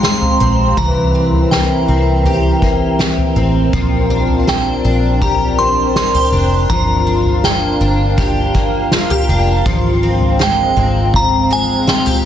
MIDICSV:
0, 0, Header, 1, 6, 480
1, 0, Start_track
1, 0, Tempo, 740741
1, 498, Time_signature, 4, 2, 24, 8
1, 7939, End_track
2, 0, Start_track
2, 0, Title_t, "Synth bell"
2, 0, Program_c, 0, 98
2, 31, Note_on_c, 0, 84, 84
2, 503, Note_on_c, 0, 82, 93
2, 518, Note_off_c, 0, 84, 0
2, 981, Note_on_c, 0, 79, 65
2, 995, Note_off_c, 0, 82, 0
2, 1913, Note_off_c, 0, 79, 0
2, 2909, Note_on_c, 0, 79, 77
2, 3382, Note_on_c, 0, 82, 76
2, 3397, Note_off_c, 0, 79, 0
2, 3620, Note_on_c, 0, 84, 98
2, 3627, Note_off_c, 0, 82, 0
2, 3859, Note_off_c, 0, 84, 0
2, 3866, Note_on_c, 0, 84, 95
2, 4316, Note_off_c, 0, 84, 0
2, 4339, Note_on_c, 0, 82, 86
2, 4826, Note_on_c, 0, 79, 68
2, 4833, Note_off_c, 0, 82, 0
2, 5756, Note_off_c, 0, 79, 0
2, 6759, Note_on_c, 0, 79, 81
2, 7232, Note_on_c, 0, 82, 86
2, 7242, Note_off_c, 0, 79, 0
2, 7469, Note_on_c, 0, 80, 97
2, 7472, Note_off_c, 0, 82, 0
2, 7687, Note_off_c, 0, 80, 0
2, 7704, Note_on_c, 0, 79, 83
2, 7939, Note_off_c, 0, 79, 0
2, 7939, End_track
3, 0, Start_track
3, 0, Title_t, "Ambient pad"
3, 0, Program_c, 1, 92
3, 0, Note_on_c, 1, 56, 67
3, 0, Note_on_c, 1, 60, 77
3, 0, Note_on_c, 1, 77, 62
3, 0, Note_on_c, 1, 82, 85
3, 473, Note_off_c, 1, 77, 0
3, 479, Note_off_c, 1, 56, 0
3, 501, Note_on_c, 1, 76, 73
3, 503, Note_on_c, 1, 70, 68
3, 2400, Note_off_c, 1, 76, 0
3, 2420, Note_on_c, 1, 74, 67
3, 4313, Note_off_c, 1, 60, 0
3, 4320, Note_off_c, 1, 74, 0
3, 4342, Note_on_c, 1, 62, 79
3, 4342, Note_on_c, 1, 77, 70
3, 6234, Note_off_c, 1, 70, 0
3, 6241, Note_off_c, 1, 62, 0
3, 6256, Note_on_c, 1, 60, 73
3, 6260, Note_on_c, 1, 56, 69
3, 7939, Note_off_c, 1, 56, 0
3, 7939, Note_off_c, 1, 60, 0
3, 7939, Note_off_c, 1, 77, 0
3, 7939, Note_off_c, 1, 82, 0
3, 7939, End_track
4, 0, Start_track
4, 0, Title_t, "Twelve-string acoustic guitar"
4, 0, Program_c, 2, 25
4, 0, Note_on_c, 2, 53, 70
4, 0, Note_on_c, 2, 56, 53
4, 0, Note_on_c, 2, 60, 53
4, 20, Note_on_c, 2, 67, 53
4, 258, Note_off_c, 2, 60, 0
4, 261, Note_on_c, 2, 60, 58
4, 498, Note_off_c, 2, 53, 0
4, 502, Note_on_c, 2, 52, 72
4, 547, Note_off_c, 2, 56, 0
4, 741, Note_off_c, 2, 60, 0
4, 743, Note_on_c, 2, 60, 50
4, 983, Note_on_c, 2, 58, 51
4, 1217, Note_off_c, 2, 60, 0
4, 1220, Note_on_c, 2, 60, 50
4, 1460, Note_off_c, 2, 67, 0
4, 1463, Note_on_c, 2, 67, 61
4, 1698, Note_off_c, 2, 58, 0
4, 1700, Note_on_c, 2, 58, 53
4, 1936, Note_off_c, 2, 67, 0
4, 1938, Note_on_c, 2, 67, 51
4, 2175, Note_off_c, 2, 60, 0
4, 2178, Note_on_c, 2, 60, 54
4, 2415, Note_off_c, 2, 52, 0
4, 2418, Note_on_c, 2, 53, 65
4, 2656, Note_off_c, 2, 60, 0
4, 2658, Note_on_c, 2, 62, 50
4, 2896, Note_off_c, 2, 58, 0
4, 2899, Note_on_c, 2, 60, 54
4, 3138, Note_off_c, 2, 62, 0
4, 3140, Note_on_c, 2, 62, 54
4, 3380, Note_off_c, 2, 67, 0
4, 3382, Note_on_c, 2, 67, 67
4, 3614, Note_off_c, 2, 60, 0
4, 3621, Note_on_c, 2, 60, 61
4, 3860, Note_off_c, 2, 67, 0
4, 3862, Note_on_c, 2, 65, 52
4, 3983, Note_off_c, 2, 65, 0
4, 3983, Note_on_c, 2, 67, 52
4, 4097, Note_off_c, 2, 62, 0
4, 4100, Note_on_c, 2, 62, 63
4, 4338, Note_off_c, 2, 53, 0
4, 4340, Note_on_c, 2, 53, 67
4, 4387, Note_off_c, 2, 60, 0
4, 4388, Note_off_c, 2, 67, 0
4, 4577, Note_off_c, 2, 62, 0
4, 4579, Note_on_c, 2, 62, 51
4, 4820, Note_on_c, 2, 58, 57
4, 5052, Note_off_c, 2, 62, 0
4, 5059, Note_on_c, 2, 62, 54
4, 5299, Note_on_c, 2, 67, 73
4, 5529, Note_off_c, 2, 58, 0
4, 5537, Note_on_c, 2, 58, 56
4, 5777, Note_off_c, 2, 67, 0
4, 5779, Note_on_c, 2, 65, 56
4, 5899, Note_off_c, 2, 65, 0
4, 5899, Note_on_c, 2, 67, 55
4, 6013, Note_off_c, 2, 62, 0
4, 6021, Note_on_c, 2, 62, 63
4, 6255, Note_off_c, 2, 53, 0
4, 6258, Note_on_c, 2, 53, 73
4, 6305, Note_off_c, 2, 58, 0
4, 6306, Note_off_c, 2, 67, 0
4, 6307, Note_off_c, 2, 62, 0
4, 6499, Note_on_c, 2, 60, 53
4, 6734, Note_on_c, 2, 56, 57
4, 6974, Note_off_c, 2, 60, 0
4, 6976, Note_on_c, 2, 60, 51
4, 7447, Note_off_c, 2, 56, 0
4, 7455, Note_on_c, 2, 56, 58
4, 7694, Note_on_c, 2, 65, 55
4, 7814, Note_off_c, 2, 65, 0
4, 7814, Note_on_c, 2, 67, 54
4, 7931, Note_off_c, 2, 60, 0
4, 7939, Note_off_c, 2, 53, 0
4, 7939, Note_off_c, 2, 56, 0
4, 7939, Note_off_c, 2, 67, 0
4, 7939, End_track
5, 0, Start_track
5, 0, Title_t, "Fingered electric bass"
5, 0, Program_c, 3, 33
5, 0, Note_on_c, 3, 32, 81
5, 233, Note_off_c, 3, 32, 0
5, 261, Note_on_c, 3, 34, 79
5, 487, Note_off_c, 3, 34, 0
5, 500, Note_on_c, 3, 36, 98
5, 1193, Note_off_c, 3, 36, 0
5, 1220, Note_on_c, 3, 36, 78
5, 2153, Note_off_c, 3, 36, 0
5, 2178, Note_on_c, 3, 33, 85
5, 2406, Note_off_c, 3, 33, 0
5, 2419, Note_on_c, 3, 34, 95
5, 3112, Note_off_c, 3, 34, 0
5, 3140, Note_on_c, 3, 34, 82
5, 4073, Note_off_c, 3, 34, 0
5, 4095, Note_on_c, 3, 29, 76
5, 4324, Note_off_c, 3, 29, 0
5, 4339, Note_on_c, 3, 31, 90
5, 5032, Note_off_c, 3, 31, 0
5, 5058, Note_on_c, 3, 31, 76
5, 5992, Note_off_c, 3, 31, 0
5, 6016, Note_on_c, 3, 29, 87
5, 6245, Note_off_c, 3, 29, 0
5, 6259, Note_on_c, 3, 32, 88
5, 6952, Note_off_c, 3, 32, 0
5, 6976, Note_on_c, 3, 32, 81
5, 7911, Note_off_c, 3, 32, 0
5, 7939, End_track
6, 0, Start_track
6, 0, Title_t, "Drums"
6, 20, Note_on_c, 9, 38, 90
6, 85, Note_off_c, 9, 38, 0
6, 142, Note_on_c, 9, 43, 60
6, 207, Note_off_c, 9, 43, 0
6, 501, Note_on_c, 9, 36, 90
6, 503, Note_on_c, 9, 43, 96
6, 565, Note_off_c, 9, 36, 0
6, 567, Note_off_c, 9, 43, 0
6, 858, Note_on_c, 9, 43, 56
6, 923, Note_off_c, 9, 43, 0
6, 982, Note_on_c, 9, 38, 87
6, 1047, Note_off_c, 9, 38, 0
6, 1456, Note_on_c, 9, 43, 62
6, 1520, Note_off_c, 9, 43, 0
6, 1699, Note_on_c, 9, 36, 75
6, 1763, Note_off_c, 9, 36, 0
6, 1940, Note_on_c, 9, 38, 81
6, 2005, Note_off_c, 9, 38, 0
6, 2060, Note_on_c, 9, 43, 53
6, 2125, Note_off_c, 9, 43, 0
6, 2418, Note_on_c, 9, 43, 99
6, 2419, Note_on_c, 9, 36, 80
6, 2483, Note_off_c, 9, 43, 0
6, 2484, Note_off_c, 9, 36, 0
6, 2777, Note_on_c, 9, 43, 58
6, 2841, Note_off_c, 9, 43, 0
6, 2900, Note_on_c, 9, 38, 99
6, 2964, Note_off_c, 9, 38, 0
6, 3379, Note_on_c, 9, 43, 66
6, 3380, Note_on_c, 9, 36, 90
6, 3444, Note_off_c, 9, 43, 0
6, 3445, Note_off_c, 9, 36, 0
6, 3860, Note_on_c, 9, 38, 87
6, 3924, Note_off_c, 9, 38, 0
6, 3982, Note_on_c, 9, 43, 64
6, 4047, Note_off_c, 9, 43, 0
6, 4340, Note_on_c, 9, 36, 84
6, 4341, Note_on_c, 9, 43, 93
6, 4405, Note_off_c, 9, 36, 0
6, 4405, Note_off_c, 9, 43, 0
6, 4699, Note_on_c, 9, 43, 55
6, 4764, Note_off_c, 9, 43, 0
6, 4820, Note_on_c, 9, 38, 102
6, 4885, Note_off_c, 9, 38, 0
6, 5298, Note_on_c, 9, 43, 65
6, 5299, Note_on_c, 9, 36, 83
6, 5363, Note_off_c, 9, 43, 0
6, 5364, Note_off_c, 9, 36, 0
6, 5538, Note_on_c, 9, 36, 74
6, 5603, Note_off_c, 9, 36, 0
6, 5776, Note_on_c, 9, 38, 85
6, 5841, Note_off_c, 9, 38, 0
6, 5899, Note_on_c, 9, 43, 56
6, 5964, Note_off_c, 9, 43, 0
6, 6259, Note_on_c, 9, 36, 95
6, 6260, Note_on_c, 9, 43, 109
6, 6323, Note_off_c, 9, 36, 0
6, 6325, Note_off_c, 9, 43, 0
6, 6614, Note_on_c, 9, 43, 57
6, 6679, Note_off_c, 9, 43, 0
6, 6738, Note_on_c, 9, 38, 91
6, 6802, Note_off_c, 9, 38, 0
6, 6977, Note_on_c, 9, 43, 49
6, 7042, Note_off_c, 9, 43, 0
6, 7216, Note_on_c, 9, 43, 64
6, 7217, Note_on_c, 9, 36, 80
6, 7281, Note_off_c, 9, 43, 0
6, 7282, Note_off_c, 9, 36, 0
6, 7695, Note_on_c, 9, 38, 93
6, 7760, Note_off_c, 9, 38, 0
6, 7819, Note_on_c, 9, 43, 58
6, 7884, Note_off_c, 9, 43, 0
6, 7939, End_track
0, 0, End_of_file